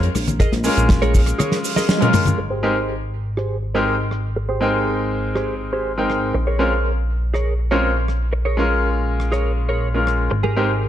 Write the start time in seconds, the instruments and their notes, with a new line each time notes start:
0.03 closed hi-hat
0.15 analog synth bass A#1, cross-stick, open hi-hat, high conga, cabasa
0.28 closed hi-hat, low conga, cabasa
0.40 clean electric guitar G#4 A#4 D#5, kick, closed hi-hat, cabasa
0.52 analog synth bass A#1, snare, closed hi-hat, high conga
0.64 grand piano G#3 C#4 F4 A#4, muted clean electric guitar stroke, open hi-hat, muted conga, cabasa
0.77 analog synth bass A#1, closed hi-hat, cabasa
0.89 kick, snare, closed hi-hat, cabasa
1.02 clean electric guitar G#4 A#4 C#5, closed hi-hat, high conga
1.14 kick, open hi-hat, muted conga, cabasa
1.26 cross-stick, closed hi-hat, cabasa
1.39 clean electric guitar G#4 A#4 C#5, cross-stick, closed hi-hat, high tom, muted conga, high conga, cabasa
1.52 snare, closed hi-hat
1.64 open hi-hat, cabasa
1.76 clean electric guitar G#4 A#4 D#5, snare, high conga, cabasa
1.89 snare, closed hi-hat, cabasa
2.00 grand piano G#3 C#4 F4 A#4, closed hi-hat, mid tom
2.13 cross-stick, mid tom, open hi-hat, muted conga, high conga, cabasa
2.25 closed hi-hat, mid tom, low conga, cabasa
2.38 analog synth bass G#1, muted clean electric guitar stroke
2.50 clean electric guitar G4 G#4 C5
2.63 grand piano G#3 C4 D#4 G4 A#4
3.37 clean electric guitar G4 G#4 C5, cross-stick
3.74 grand piano G#3 C4 D#4 G4 A#4, clean electric guitar G4 G#4 C5
4.11 muted clean electric guitar stroke, cross-stick
4.36 muted clean electric guitar stroke
4.49 clean electric guitar G4 G#4 C5
4.61 grand piano G#3 C4 D#4 A#4 G5
5.35 clean electric guitar G4 G#4 C5, cross-stick
5.73 clean electric guitar G4 G#4 C5
5.98 grand piano G#3 C4 D#4 A#4 G5
6.10 muted clean electric guitar stroke, cross-stick
6.34 analog synth bass A#1, muted clean electric guitar stroke
6.47 clean electric guitar G#4 A#4 C#5
6.59 grand piano G#3 C4 C#4 F4 A#4
7.34 clean electric guitar G#4 A#4 C#5, cross-stick
7.71 grand piano G#3 C4 C#4 F4 A#4, clean electric guitar G#4 A#4 C#5
8.08 muted clean electric guitar stroke, cross-stick
8.33 muted clean electric guitar stroke
8.45 clean electric guitar G#4 A#4 C#5
8.57 grand piano G#3 C#4 F4 A#4
9.20 cross-stick
9.32 clean electric guitar G#4 A#4 C#5, cross-stick
9.69 clean electric guitar G#4 A#4 C#5
9.94 grand piano G#3 C#4 F4 A#4
10.06 muted clean electric guitar stroke, cross-stick
10.31 analog synth bass G#1, muted clean electric guitar stroke
10.43 clean electric guitar G4 G#4 A#4, high conga
10.56 grand piano G#3 C4 D#4 G4 A#4